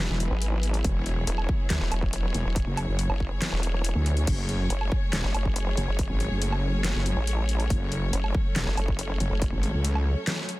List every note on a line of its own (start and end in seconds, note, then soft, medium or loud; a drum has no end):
0.00 4.23 F#3 medium
0.00 4.23 B3 medium
0.00 4.23 E4 medium
0.00 4.23 G#4 medium
0.00 0.81 B4 medium
0.10 0.29 E1 loud
0.20 closed hi-hat medium
0.31 0.83 G#1 loud
0.42 closed hi-hat medium
0.63 closed hi-hat medium
0.74 closed hi-hat soft
0.84 1.26 E1 loud
0.84 10.60 C#5 medium
0.84 kick loud
0.84 closed hi-hat medium
1.06 closed hi-hat medium
1.27 1.47 E1 medium
1.27 closed hi-hat medium
1.38 low woodblock medium
1.49 kick loud
1.70 1.79 D2 loud
1.70 snare loud
1.70 clap medium
1.70 closed hi-hat medium
1.81 1.90 E1 loud
1.92 2.33 E1 medium
1.92 closed hi-hat medium
1.92 low woodblock medium
2.02 kick medium
2.13 closed hi-hat medium
2.34 2.44 E1 loud
2.34 closed hi-hat medium
2.45 2.65 E1 loud
2.56 kick loud
2.56 closed hi-hat medium
2.67 2.86 F#1 loud
2.77 closed hi-hat medium
2.77 low woodblock medium
2.88 3.08 F#1 loud
2.99 closed hi-hat medium
3.10 3.29 F#1 loud
3.10 low woodblock medium
3.20 kick medium
3.42 snare loud
3.42 clap medium
3.42 closed hi-hat medium
3.52 3.94 E1 loud
3.63 closed hi-hat medium
3.84 closed hi-hat medium
3.95 4.26 D2 loud
4.06 closed hi-hat medium
4.17 closed hi-hat soft
4.27 4.69 F#1 loud
4.27 10.60 F#3 medium
4.27 10.60 A3 medium
4.27 10.60 C#4 medium
4.27 7.67 G#4 medium
4.27 kick loud
4.27 closed hi-hat medium
4.27 crash medium
4.49 closed hi-hat medium
4.70 4.90 F#1 medium
4.70 closed hi-hat medium
4.81 low woodblock medium
4.92 kick loud
5.13 5.22 E1 loud
5.13 snare loud
5.13 clap loud
5.13 closed hi-hat medium
5.24 5.33 F#1 medium
5.34 5.76 F#1 loud
5.34 closed hi-hat medium
5.34 low woodblock medium
5.45 kick medium
5.56 closed hi-hat medium
5.77 5.86 F#1 loud
5.77 closed hi-hat medium
5.88 6.08 F#1 loud
5.99 kick loud
5.99 closed hi-hat medium
6.10 6.29 G#1 loud
6.20 closed hi-hat medium
6.31 6.94 F#1 loud
6.42 closed hi-hat medium
6.52 low woodblock medium
6.84 snare loud
6.84 clap loud
6.84 closed hi-hat medium
6.95 7.15 F#1 loud
7.06 closed hi-hat medium
7.17 7.69 A1 medium
7.27 closed hi-hat medium
7.49 closed hi-hat medium
7.60 closed hi-hat soft
7.70 8.11 F#1 loud
7.70 10.60 A4 medium
7.70 kick loud
7.70 closed hi-hat medium
7.92 closed hi-hat medium
8.13 8.33 F#1 loud
8.13 closed hi-hat medium
8.24 low woodblock medium
8.35 kick loud
8.56 8.65 E1 loud
8.56 snare loud
8.56 clap medium
8.56 closed hi-hat medium
8.67 8.76 F#1 medium
8.77 9.19 F#1 medium
8.77 closed hi-hat medium
8.77 low woodblock medium
8.88 kick medium
8.99 closed hi-hat medium
9.20 9.29 F#1 loud
9.20 closed hi-hat medium
9.31 9.51 F#1 loud
9.42 kick loud
9.42 closed hi-hat medium
9.53 9.72 G#1 loud
9.63 closed hi-hat medium
9.74 10.15 C#2 loud
9.85 closed hi-hat medium
9.95 low woodblock medium
10.27 snare loud
10.27 clap medium
10.27 closed hi-hat medium
10.49 closed hi-hat soft